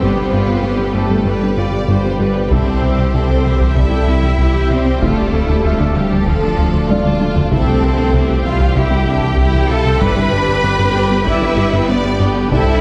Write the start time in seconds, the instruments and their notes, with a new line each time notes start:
Already playing: ambient pad G3 G4, felt piano E6
0.01 double bass section G1, sub bass G1, tuba G1, analog synth bass G2, ambient pad B2 D5, synth arpeggio sound G3, cello section B3, violin section G4 B4, viola section B4 D5
0.17 analog synth bass G3, synth arpeggio sound D4, viola section G4 B4
0.32 analog synth bass G2, violin section F4, synth arpeggio sound G4, viola section B4 D5, felt piano B5
0.48 analog synth bass G2, viola section G4 B4
0.63 analog synth bass G2, synth arpeggio sound G3, violin section G4, viola section B4 D5
0.79 analog synth bass G2, synth arpeggio sound G4, viola section G4 B4
0.94 analog synth bass G2, cello section A3, synth arpeggio sound B3, violin section A4, viola section B4 D5
1.10 analog synth bass G2, synth arpeggio sound B3, viola section G4 B4
1.25 analog synth bass G2, synth arpeggio sound G3, cello section G3, violin section G4 B4, viola section B4 D5
1.41 analog synth bass G3, synth arpeggio sound D4, viola section G4 B4
1.57 analog synth bass G2, felt piano F4 F5, synth arpeggio sound G4, viola section B4 D5, violin section D5
1.72 analog synth bass G2, synth arpeggio sound B3, viola section G4 B4
1.88 analog synth bass G2, cello section G3, synth arpeggio sound G3, violin section G4 C5, viola section B4 D5
2.04 analog synth bass G2, synth arpeggio sound B3, viola section G4 B4
2.20 analog synth bass G2, synth arpeggio sound G4, violin section B4, viola section B4 D5
2.35 analog synth bass G3, viola section G4 B4
2.50 analog synth bass C2, sub bass C2, double bass section C2, tuba C2, synth arpeggio sound C3, ambient pad G3 C4 G4 G5, cello section C4, viola section E4 E5, violin section A4 C5, taiko
2.66 analog synth bass C3, synth arpeggio sound G3, viola section G4 G5
2.82 analog synth bass C2, synth arpeggio sound C4, viola section E4 E5, violin section G4
2.98 analog synth bass C2, viola section G4 G5
3.13 analog synth bass C2, synth arpeggio sound C3, cello section C4, viola section E4 E5, violin section A4 C5
3.29 analog synth bass C2, synth arpeggio sound C4, viola section G4 G5
3.45 analog synth bass C2, synth arpeggio sound E3, viola section E4 E5, violin section G4
3.60 analog synth bass C2, synth arpeggio sound E3, viola section G4 G5
3.76 analog synth bass C2, synth arpeggio sound C3, viola section E4 E5, cello section E4, violin section A4 E5, felt piano D5, taiko
3.91 analog synth bass C3, synth arpeggio sound G3, viola section G4 G5
4.08 analog synth bass C2, synth arpeggio sound C4, viola section E4 E5, violin section G4
4.23 analog synth bass C2, synth arpeggio sound E3, viola section G4 G5
4.38 analog synth bass C2, synth arpeggio sound C3, viola section E4 E5, violin section G4
4.54 analog synth bass C2, synth arpeggio sound E3, viola section G4 G5
4.70 analog synth bass C2, synth arpeggio sound C4, cello section C4, viola section E4 E5, violin section C5
4.85 analog synth bass C3, viola section G4 G5
5.01 sub bass D1, analog synth bass D2, double bass section D2, tuba D2, synth arpeggio sound D3, ambient pad F3 A3 D4 D5, cello section A3, violin section F4 A4, viola section A4 F5, taiko
5.18 analog synth bass D3, synth arpeggio sound A3, viola section D5 A5
5.32 analog synth bass D2, synth arpeggio sound D4, violin section E4, viola section A4 F5
5.49 analog synth bass D2, viola section D5 A5
5.62 analog synth bass D2, synth arpeggio sound D3, violin section F4, viola section A4 F5, felt piano E5
5.79 analog synth bass D2, synth arpeggio sound D4, viola section D5 A5
5.94 analog synth bass D2, synth arpeggio sound F3, cello section G3, violin section G4, viola section A4 F5
6.11 analog synth bass D2, synth arpeggio sound F3, viola section D5 A5
6.26 analog synth bass D2, synth arpeggio sound D3, cello section F3, violin section F4 A4, viola section A4 F5, taiko
6.42 analog synth bass D3, synth arpeggio sound A3, viola section D5 A5
6.58 analog synth bass D2, synth arpeggio sound D4, viola section A4 F5
6.73 analog synth bass D2, synth arpeggio sound F3, viola section D5 A5
6.89 analog synth bass D2, synth arpeggio sound D3, felt piano D4 D5, violin section F4, viola section A4 F5, taiko high
7.05 analog synth bass D2, synth arpeggio sound F3, viola section D5 A5, taiko high
7.21 analog synth bass D2, synth arpeggio sound D4, viola section A4 F5, taiko high
7.36 analog synth bass D3, viola section D5 A5, taiko low
7.51 analog synth bass C2, tuba C2, sub bass C2, double bass section C2, synth arpeggio sound C3, ambient pad G3 C4 G4 G5, cello section C4, viola section E4 E5, violin section A4 C5, taiko
7.67 analog synth bass C3, synth arpeggio sound G3, viola section G4 G5
7.82 analog synth bass C2, synth arpeggio sound C4, viola section E4 E5, felt piano A4
7.99 analog synth bass C2, viola section G4 G5
8.13 analog synth bass C2, synth arpeggio sound C3, viola section E4 E5, violin section G4
8.29 analog synth bass C2, synth arpeggio sound C4, viola section G4 G5
8.44 analog synth bass C2, synth arpeggio sound E3, viola section E4 E5, cello section F4, violin section F5
8.60 analog synth bass C2, synth arpeggio sound E3, viola section G4 G5
8.75 analog synth bass C2, synth arpeggio sound C3, violin section E4 G5, viola section E4 E5, cello section G4, taiko
8.91 analog synth bass C3, synth arpeggio sound G3, viola section G4 G5
9.05 analog synth bass C2, synth arpeggio sound C4, violin section D4, viola section E4 E5, felt piano E5
9.21 analog synth bass C2, synth arpeggio sound E3, viola section G4 G5
9.37 analog synth bass C2, synth arpeggio sound C3, violin section E4, viola section E4 E5
9.54 analog synth bass C2, synth arpeggio sound E3, viola section G4 G5
9.70 analog synth bass C2, synth arpeggio sound C4, viola section E4 E5, violin section F4 A5, cello section A4
9.86 analog synth bass C3, viola section G4 G5
10.00 double bass section G1, tuba G1, sub bass G1, analog synth bass G2, synth arpeggio sound G3, ambient pad D4 G5, violin section E4 B5, cello section B4, viola section B4 D5, taiko
10.16 analog synth bass G3, synth arpeggio sound D4, viola section G4 B4
10.32 analog synth bass G2, violin section D4, synth arpeggio sound G4, viola section B4 D5
10.48 analog synth bass G2, viola section G4 B4
10.64 analog synth bass G2, synth arpeggio sound G3, violin section G4, viola section B4 D5
10.79 analog synth bass G2, synth arpeggio sound G4, viola section G4 B4
10.95 analog synth bass G2, synth arpeggio sound B3, viola section B4 D5
11.10 analog synth bass G2, synth arpeggio sound B3, viola section G4 B4
11.25 analog synth bass G2, synth arpeggio sound G3, cello section E4, violin section B4 E5, viola section B4 D5, taiko
11.42 analog synth bass G3, synth arpeggio sound D4, viola section G4 B4
11.57 analog synth bass G2, synth arpeggio sound G4, viola section B4 D5
11.73 analog synth bass G2, synth arpeggio sound B3, viola section G4 B4
11.89 analog synth bass G2, synth arpeggio sound G3, cello section B3, viola section B4 D5, violin section B4 D5
12.04 analog synth bass G2, synth arpeggio sound B3, viola section G4 B4
12.19 analog synth bass G2, violin section G4, synth arpeggio sound G4, viola section B4 D5
12.36 analog synth bass G3, viola section G4 B4
12.51 sub bass C2, analog synth bass C2, double bass section C2, tuba C2, synth arpeggio sound C3, cello section E4, viola section E4 C5, violin section A4 E5, felt piano D5, taiko
12.67 analog synth bass C3, synth arpeggio sound G3, viola section G4 E5